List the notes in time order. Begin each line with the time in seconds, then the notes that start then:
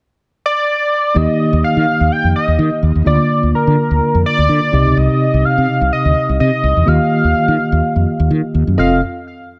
0.46 D5
1.14 D#2 D#3 A#3 D#4 G4 D#5
1.53 D#2
1.63 F5, muted fretless electric bass stroke
1.77 D#3
2.00 D#2
2.12 G5
2.24 F2
2.36 D#5
2.48 D#2
2.59 D#3
2.83 D#2
2.95 D#2
3.05 D2 D3 A#3 D4 F4 D5
3.43 D2
3.54 A#4, muted fretless electric bass stroke
3.67 D3
3.91 D2
4.15 F2
4.26 D5
4.38 D2
4.49 D3
4.72 C2 C3 C4 D#4 G4 D#5
4.86 C#2
4.97 C2 D#5
5.34 C2
5.45 F5, muted fretless electric bass stroke
5.58 C3
5.81 C2
5.93 D#5
6.05 D2
6.29 C2
6.40 C3 D#5
6.64 C2
6.77 E2
6.86 D#2 D#3 A#3 F4 G4 D#5 F5
7.24 D#2
7.35 muted fretless electric bass stroke
7.48 D#3
7.72 D#2
7.96 F2
8.20 D#2
8.31 D#3
8.54 D#2
8.67 F#2
8.78 F1 F2 C4 F4 A4 D#5 F5